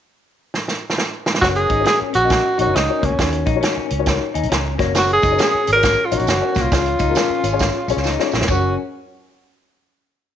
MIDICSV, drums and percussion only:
0, 0, Header, 1, 2, 480
1, 0, Start_track
1, 0, Key_signature, 6, "major"
1, 0, Tempo, 442152
1, 1546, Time_signature, 4, 2, 24, 8
1, 11239, End_track
2, 0, Start_track
2, 0, Title_t, "Drums"
2, 586, Note_on_c, 9, 38, 51
2, 695, Note_off_c, 9, 38, 0
2, 739, Note_on_c, 9, 38, 54
2, 848, Note_off_c, 9, 38, 0
2, 973, Note_on_c, 9, 38, 55
2, 1065, Note_off_c, 9, 38, 0
2, 1065, Note_on_c, 9, 38, 76
2, 1174, Note_off_c, 9, 38, 0
2, 1370, Note_on_c, 9, 38, 90
2, 1460, Note_off_c, 9, 38, 0
2, 1460, Note_on_c, 9, 38, 85
2, 1541, Note_on_c, 9, 36, 94
2, 1544, Note_on_c, 9, 42, 76
2, 1552, Note_off_c, 9, 38, 0
2, 1552, Note_on_c, 9, 38, 87
2, 1649, Note_off_c, 9, 36, 0
2, 1652, Note_off_c, 9, 42, 0
2, 1661, Note_off_c, 9, 38, 0
2, 1689, Note_on_c, 9, 42, 42
2, 1797, Note_off_c, 9, 42, 0
2, 1840, Note_on_c, 9, 42, 50
2, 1846, Note_on_c, 9, 36, 82
2, 1948, Note_off_c, 9, 42, 0
2, 1954, Note_off_c, 9, 36, 0
2, 2012, Note_on_c, 9, 42, 80
2, 2025, Note_on_c, 9, 38, 99
2, 2121, Note_off_c, 9, 42, 0
2, 2134, Note_off_c, 9, 38, 0
2, 2318, Note_on_c, 9, 42, 65
2, 2427, Note_off_c, 9, 42, 0
2, 2495, Note_on_c, 9, 42, 76
2, 2502, Note_on_c, 9, 36, 85
2, 2506, Note_on_c, 9, 38, 95
2, 2604, Note_off_c, 9, 42, 0
2, 2610, Note_off_c, 9, 36, 0
2, 2615, Note_off_c, 9, 38, 0
2, 2807, Note_on_c, 9, 42, 64
2, 2915, Note_off_c, 9, 42, 0
2, 2991, Note_on_c, 9, 42, 84
2, 2996, Note_on_c, 9, 38, 90
2, 3099, Note_off_c, 9, 42, 0
2, 3105, Note_off_c, 9, 38, 0
2, 3290, Note_on_c, 9, 36, 78
2, 3290, Note_on_c, 9, 42, 64
2, 3399, Note_off_c, 9, 36, 0
2, 3399, Note_off_c, 9, 42, 0
2, 3461, Note_on_c, 9, 36, 97
2, 3461, Note_on_c, 9, 42, 68
2, 3470, Note_on_c, 9, 38, 92
2, 3569, Note_off_c, 9, 36, 0
2, 3570, Note_off_c, 9, 42, 0
2, 3578, Note_off_c, 9, 38, 0
2, 3608, Note_on_c, 9, 42, 45
2, 3716, Note_off_c, 9, 42, 0
2, 3759, Note_on_c, 9, 42, 54
2, 3765, Note_on_c, 9, 36, 81
2, 3867, Note_off_c, 9, 42, 0
2, 3873, Note_off_c, 9, 36, 0
2, 3934, Note_on_c, 9, 42, 78
2, 3947, Note_on_c, 9, 38, 109
2, 4043, Note_off_c, 9, 42, 0
2, 4056, Note_off_c, 9, 38, 0
2, 4238, Note_on_c, 9, 42, 61
2, 4347, Note_off_c, 9, 42, 0
2, 4407, Note_on_c, 9, 42, 73
2, 4417, Note_on_c, 9, 36, 85
2, 4417, Note_on_c, 9, 38, 105
2, 4515, Note_off_c, 9, 42, 0
2, 4525, Note_off_c, 9, 36, 0
2, 4526, Note_off_c, 9, 38, 0
2, 4721, Note_on_c, 9, 42, 57
2, 4812, Note_off_c, 9, 42, 0
2, 4812, Note_on_c, 9, 42, 42
2, 4901, Note_off_c, 9, 42, 0
2, 4901, Note_on_c, 9, 42, 84
2, 4907, Note_on_c, 9, 38, 93
2, 5010, Note_off_c, 9, 42, 0
2, 5015, Note_off_c, 9, 38, 0
2, 5203, Note_on_c, 9, 36, 84
2, 5207, Note_on_c, 9, 42, 58
2, 5213, Note_on_c, 9, 38, 31
2, 5311, Note_off_c, 9, 36, 0
2, 5316, Note_off_c, 9, 42, 0
2, 5322, Note_off_c, 9, 38, 0
2, 5368, Note_on_c, 9, 42, 74
2, 5376, Note_on_c, 9, 54, 96
2, 5377, Note_on_c, 9, 38, 90
2, 5477, Note_off_c, 9, 42, 0
2, 5485, Note_off_c, 9, 38, 0
2, 5485, Note_off_c, 9, 54, 0
2, 5522, Note_on_c, 9, 42, 44
2, 5630, Note_off_c, 9, 42, 0
2, 5668, Note_on_c, 9, 54, 55
2, 5676, Note_on_c, 9, 42, 56
2, 5682, Note_on_c, 9, 36, 86
2, 5777, Note_off_c, 9, 54, 0
2, 5784, Note_off_c, 9, 42, 0
2, 5790, Note_off_c, 9, 36, 0
2, 5846, Note_on_c, 9, 54, 81
2, 5850, Note_on_c, 9, 42, 77
2, 5863, Note_on_c, 9, 38, 116
2, 5955, Note_off_c, 9, 54, 0
2, 5959, Note_off_c, 9, 42, 0
2, 5972, Note_off_c, 9, 38, 0
2, 6157, Note_on_c, 9, 42, 63
2, 6158, Note_on_c, 9, 54, 55
2, 6265, Note_off_c, 9, 42, 0
2, 6266, Note_off_c, 9, 54, 0
2, 6326, Note_on_c, 9, 54, 85
2, 6328, Note_on_c, 9, 42, 71
2, 6335, Note_on_c, 9, 36, 86
2, 6338, Note_on_c, 9, 38, 101
2, 6435, Note_off_c, 9, 54, 0
2, 6436, Note_off_c, 9, 42, 0
2, 6444, Note_off_c, 9, 36, 0
2, 6447, Note_off_c, 9, 38, 0
2, 6638, Note_on_c, 9, 54, 46
2, 6639, Note_on_c, 9, 42, 69
2, 6724, Note_off_c, 9, 42, 0
2, 6724, Note_on_c, 9, 42, 42
2, 6746, Note_off_c, 9, 54, 0
2, 6808, Note_on_c, 9, 54, 69
2, 6817, Note_off_c, 9, 42, 0
2, 6817, Note_on_c, 9, 42, 85
2, 6823, Note_on_c, 9, 38, 95
2, 6917, Note_off_c, 9, 54, 0
2, 6926, Note_off_c, 9, 42, 0
2, 6931, Note_off_c, 9, 38, 0
2, 7106, Note_on_c, 9, 54, 49
2, 7121, Note_on_c, 9, 42, 64
2, 7123, Note_on_c, 9, 36, 77
2, 7127, Note_on_c, 9, 38, 30
2, 7215, Note_off_c, 9, 54, 0
2, 7229, Note_off_c, 9, 42, 0
2, 7232, Note_off_c, 9, 36, 0
2, 7235, Note_off_c, 9, 38, 0
2, 7292, Note_on_c, 9, 54, 88
2, 7295, Note_on_c, 9, 36, 112
2, 7296, Note_on_c, 9, 42, 84
2, 7304, Note_on_c, 9, 38, 94
2, 7400, Note_off_c, 9, 54, 0
2, 7404, Note_off_c, 9, 36, 0
2, 7404, Note_off_c, 9, 42, 0
2, 7413, Note_off_c, 9, 38, 0
2, 7444, Note_on_c, 9, 42, 43
2, 7552, Note_off_c, 9, 42, 0
2, 7587, Note_on_c, 9, 54, 55
2, 7590, Note_on_c, 9, 42, 53
2, 7599, Note_on_c, 9, 36, 80
2, 7696, Note_off_c, 9, 54, 0
2, 7698, Note_off_c, 9, 42, 0
2, 7708, Note_off_c, 9, 36, 0
2, 7763, Note_on_c, 9, 54, 79
2, 7769, Note_on_c, 9, 42, 78
2, 7782, Note_on_c, 9, 38, 115
2, 7872, Note_off_c, 9, 54, 0
2, 7878, Note_off_c, 9, 42, 0
2, 7891, Note_off_c, 9, 38, 0
2, 8073, Note_on_c, 9, 54, 53
2, 8074, Note_on_c, 9, 42, 65
2, 8182, Note_off_c, 9, 42, 0
2, 8182, Note_off_c, 9, 54, 0
2, 8242, Note_on_c, 9, 54, 84
2, 8249, Note_on_c, 9, 42, 66
2, 8256, Note_on_c, 9, 36, 86
2, 8260, Note_on_c, 9, 38, 100
2, 8351, Note_off_c, 9, 54, 0
2, 8358, Note_off_c, 9, 42, 0
2, 8365, Note_off_c, 9, 36, 0
2, 8369, Note_off_c, 9, 38, 0
2, 8558, Note_on_c, 9, 54, 51
2, 8570, Note_on_c, 9, 42, 62
2, 8666, Note_off_c, 9, 54, 0
2, 8678, Note_off_c, 9, 42, 0
2, 8726, Note_on_c, 9, 54, 66
2, 8743, Note_on_c, 9, 38, 50
2, 8835, Note_off_c, 9, 54, 0
2, 8852, Note_off_c, 9, 38, 0
2, 8894, Note_on_c, 9, 38, 47
2, 9003, Note_off_c, 9, 38, 0
2, 9026, Note_on_c, 9, 54, 54
2, 9049, Note_on_c, 9, 38, 70
2, 9132, Note_off_c, 9, 38, 0
2, 9132, Note_on_c, 9, 38, 80
2, 9135, Note_off_c, 9, 54, 0
2, 9203, Note_on_c, 9, 43, 90
2, 9205, Note_on_c, 9, 54, 81
2, 9213, Note_on_c, 9, 36, 82
2, 9241, Note_off_c, 9, 38, 0
2, 9312, Note_off_c, 9, 43, 0
2, 9313, Note_off_c, 9, 54, 0
2, 9322, Note_off_c, 9, 36, 0
2, 11239, End_track
0, 0, End_of_file